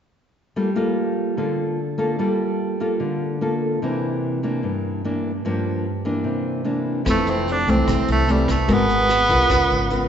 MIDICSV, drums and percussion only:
0, 0, Header, 1, 2, 480
1, 0, Start_track
1, 0, Tempo, 406229
1, 670, Time_signature, 4, 2, 24, 8
1, 11915, End_track
2, 0, Start_track
2, 0, Title_t, "Drums"
2, 8342, Note_on_c, 9, 37, 60
2, 8342, Note_on_c, 9, 42, 58
2, 8345, Note_on_c, 9, 36, 59
2, 8460, Note_off_c, 9, 37, 0
2, 8460, Note_off_c, 9, 42, 0
2, 8463, Note_off_c, 9, 36, 0
2, 8586, Note_on_c, 9, 42, 39
2, 8704, Note_off_c, 9, 42, 0
2, 8832, Note_on_c, 9, 42, 41
2, 8950, Note_off_c, 9, 42, 0
2, 9074, Note_on_c, 9, 42, 42
2, 9192, Note_off_c, 9, 42, 0
2, 9307, Note_on_c, 9, 36, 58
2, 9307, Note_on_c, 9, 37, 55
2, 9307, Note_on_c, 9, 42, 61
2, 9425, Note_off_c, 9, 36, 0
2, 9425, Note_off_c, 9, 37, 0
2, 9425, Note_off_c, 9, 42, 0
2, 9549, Note_on_c, 9, 42, 47
2, 9667, Note_off_c, 9, 42, 0
2, 9785, Note_on_c, 9, 42, 46
2, 9903, Note_off_c, 9, 42, 0
2, 10023, Note_on_c, 9, 36, 48
2, 10023, Note_on_c, 9, 37, 60
2, 10023, Note_on_c, 9, 42, 43
2, 10141, Note_off_c, 9, 36, 0
2, 10141, Note_off_c, 9, 37, 0
2, 10141, Note_off_c, 9, 42, 0
2, 10264, Note_on_c, 9, 42, 61
2, 10265, Note_on_c, 9, 36, 63
2, 10382, Note_off_c, 9, 42, 0
2, 10383, Note_off_c, 9, 36, 0
2, 10508, Note_on_c, 9, 42, 43
2, 10626, Note_off_c, 9, 42, 0
2, 10742, Note_on_c, 9, 37, 57
2, 10742, Note_on_c, 9, 42, 43
2, 10860, Note_off_c, 9, 37, 0
2, 10860, Note_off_c, 9, 42, 0
2, 10981, Note_on_c, 9, 42, 39
2, 10983, Note_on_c, 9, 36, 44
2, 11099, Note_off_c, 9, 42, 0
2, 11101, Note_off_c, 9, 36, 0
2, 11224, Note_on_c, 9, 36, 63
2, 11225, Note_on_c, 9, 37, 61
2, 11225, Note_on_c, 9, 42, 58
2, 11342, Note_off_c, 9, 36, 0
2, 11343, Note_off_c, 9, 37, 0
2, 11343, Note_off_c, 9, 42, 0
2, 11460, Note_on_c, 9, 42, 40
2, 11579, Note_off_c, 9, 42, 0
2, 11700, Note_on_c, 9, 42, 42
2, 11818, Note_off_c, 9, 42, 0
2, 11915, End_track
0, 0, End_of_file